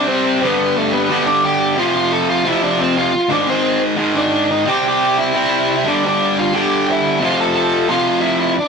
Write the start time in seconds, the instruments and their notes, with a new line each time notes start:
Already playing: distorted electric guitar C3 G3 C4
0.07 lead electric guitar C4 C5
0.41 distorted electric guitar G2 D3 G3
0.45 lead electric guitar B3 B4
0.76 lead electric guitar A3 A4
0.93 lead electric guitar B3 B4
1.10 distorted electric guitar G2 D3 G3
1.26 lead electric guitar D4 D5
1.44 lead electric guitar G4 G5
1.76 distorted electric guitar F2 C3 F3, lead electric guitar F4 F5
1.96 lead electric guitar F4 F5
2.12 lead electric guitar A4 A5
2.30 lead electric guitar F4 F5
2.44 distorted electric guitar F2 C3 F3, lead electric guitar E4 E5
2.62 lead electric guitar D4 D5
2.79 lead electric guitar C4 C5
2.97 lead electric guitar F4 F5
3.29 distorted electric guitar G#2 D#3 G#3, lead electric guitar D4 D5
3.47 lead electric guitar C4 C5
3.97 distorted electric guitar G#2 D#3 G#3
4.15 lead electric guitar D4 D5
4.51 lead electric guitar D#4 D#5
4.66 distorted electric guitar C3 G3 C4, lead electric guitar G4 G5
4.87 lead electric guitar G4 G5
5.18 lead electric guitar E4 E5
5.34 distorted electric guitar C3 G3 C4
5.85 distorted electric guitar G2 D3 G3, lead electric guitar D4 D5
6.07 lead electric guitar D4 D5
6.39 lead electric guitar F4 F5
6.53 distorted electric guitar G2 D3 G3, lead electric guitar G4 G5
6.91 lead electric guitar E4 E5
7.20 distorted electric guitar F2 C3 F3
7.25 lead electric guitar F4 F5
7.40 lead electric guitar A4 A5
7.55 lead electric guitar A4 A5
7.89 distorted electric guitar F2 C3 F3, lead electric guitar F4 F5
8.21 lead electric guitar E4 E5
8.59 lead electric guitar D4 D5